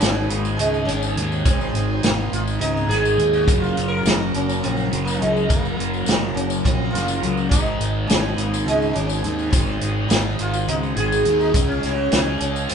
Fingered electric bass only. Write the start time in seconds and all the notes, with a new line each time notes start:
0.02 G#1
0.31 G#1
0.60 C#2
0.87 G#1
1.16 D#2
1.46 G#1
1.74 G#1
2.04 G#1
2.32 G#1
2.60 C#2
2.89 G#1
3.18 D#2
3.48 F#1
3.77 F#1
4.05 F#1
4.36 F#1
4.64 A#1
4.93 F#1
5.22 C#2
5.50 F#1
5.79 F#1
6.07 F#1
6.35 F#1
6.65 A#1
6.94 F#1
7.23 C#2
7.52 G#1
7.80 G#1
8.09 G#1
8.37 G#1
8.66 C#2
8.96 G#1
9.23 D#2
9.53 G#1
9.82 G#1
10.10 G#1
10.40 G#1
10.68 C#2
10.96 G#1
11.26 D#2
11.55 C#2
11.84 C#2
12.12 C#2
12.41 C#2
12.71 F#2